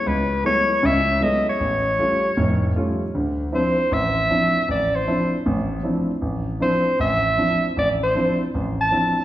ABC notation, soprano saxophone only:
X:1
M:4/4
L:1/8
Q:"Swing" 1/4=156
K:Alyd
V:1 name="Soprano saxophone"
B2 c2 e2 d c- | c6 z2 | [K:Dm] z2 c2 e4 | d c2 z4 z |
z2 c2 e4 | d c2 z2 a3 |]